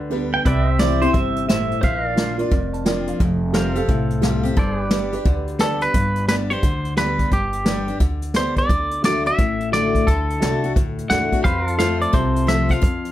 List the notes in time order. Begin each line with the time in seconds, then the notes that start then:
Already playing: D2 D3 B4 D5 G5
0.10 G3 B3 D4 G4 B4
0.34 G5
0.45 C2 C3 B4 D5 E5 G5, kick, closed hi-hat
0.67 C5
0.72 E5
0.79 E3 G3 C4 E4 G4 C5 D5, snare, closed hi-hat
1.01 C4 E4 G4 C5, closed hi-hat
1.13 G1 C3 E5, kick, closed hi-hat
1.36 closed hi-hat
1.47 A2 E4 G4 C5 E5, snare, closed hi-hat
1.71 closed hi-hat
1.81 A#1 A#2 C5 E5 F5, kick, closed hi-hat
2.06 A#4 D5
2.16 F3 A#3 D4 F4 A#4 D5, snare, closed hi-hat
2.37 D4 F4 A#4 D5, closed hi-hat
2.51 F1 F2, kick, closed hi-hat
2.73 A5, closed hi-hat
2.85 F3 A#3 D4 F4 A#4 D5 G5, snare, closed hi-hat
3.07 F5, closed hi-hat
3.20 F1 F2, kick, closed hi-hat
3.53 F3 G3 C4 G4 A4 A#4 C5 F5, snare, closed hi-hat
3.57 F5
3.75 C4 G4 A4 F5, closed hi-hat
3.88 C2 A2, kick, closed hi-hat
4.10 closed hi-hat
4.21 F3 G3 C4 G4 A4 F5, snare, closed hi-hat
4.43 C4 G4, closed hi-hat
4.57 G1 G2 A4 C5 D5, kick, closed hi-hat
4.78 G4 B4
4.90 G3 B3 D4 G4 B4 D5, snare, closed hi-hat
5.12 D4 G4 B4 D5, closed hi-hat
5.25 D2 D3, kick, closed hi-hat
5.47 closed hi-hat
5.59 G3 B3 D4 G4 A4 B4 D5, snare, closed hi-hat
5.81 B4, closed hi-hat
5.94 G1 G2, kick, closed hi-hat
6.16 closed hi-hat
6.28 G3 B3 D4 G4 B4 D5, snare, closed hi-hat
6.50 D4 G4 C5, closed hi-hat
6.63 D2 D3, kick, closed hi-hat
6.85 closed hi-hat
6.96 G3 B3 D4 G4 B4 D5, snare, closed hi-hat
7.19 kick, closed hi-hat
7.31 G1 G2 G4, kick, closed hi-hat
7.53 closed hi-hat
7.64 G3 B3 D4 G4 B4 D5, snare, closed hi-hat
7.88 D4 G4, closed hi-hat
8.00 D2 D3, kick, closed hi-hat
8.22 closed hi-hat
8.34 G3 B3 D4 G4 B4 C5 D5, snare, closed hi-hat
8.56 D5, kick, closed hi-hat
8.69 D2 D3, kick, closed hi-hat
8.91 closed hi-hat
9.02 D3 A3 D4 F#4 A4 D5, snare, closed hi-hat
9.26 D4 F#4 E5, closed hi-hat
9.39 A1 A2, kick, closed hi-hat
9.60 closed hi-hat
9.71 D3 A3 D4 F#4 A4 D5, snare, closed hi-hat
9.95 kick, closed hi-hat
10.07 D2 D3 A4, kick, closed hi-hat
10.30 closed hi-hat
10.40 C2 D3 A3 D4 F#4 A4 D5, snare, closed hi-hat
10.64 D4 F#4, closed hi-hat
10.76 D2 A2, kick, closed hi-hat
10.98 closed hi-hat
11.09 E2 D3 A3 D4 F#4 A4 D5 F#5, snare, closed hi-hat
11.32 D4 F#4, kick, closed hi-hat
11.44 F2 G4 B4 C5 F5, kick, closed hi-hat
11.67 F4 A4, closed hi-hat
11.77 F3 A3 C4 F4 A4 C5 F5, snare, closed hi-hat
12.01 D5, closed hi-hat
12.13 C2 C3 C5, kick, closed hi-hat
12.36 closed hi-hat
12.46 F3 A3 C4 F4 A4 C5 E5, snare, closed hi-hat
12.69 C4 F4 F5, kick, closed hi-hat
12.81 F2, kick, closed hi-hat
13.05 closed hi-hat